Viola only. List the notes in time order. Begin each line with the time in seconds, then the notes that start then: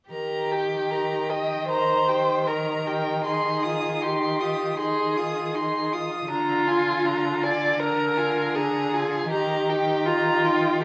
0.12 A#4
0.52 G4
0.91 A#4
1.31 G4
1.69 A#4
2.08 G4
2.48 A#4
2.87 G4
3.26 D#4
3.65 F4
4.03 D#4
4.41 F4
4.78 D#4
5.17 F4
5.55 D#4
5.93 F4
6.30 D4
6.67 F4
7.04 D4
7.43 F4
7.80 D4
8.18 F4
8.56 D4
8.93 F4
9.31 G4
9.68 D#4
10.06 G4
10.44 D#4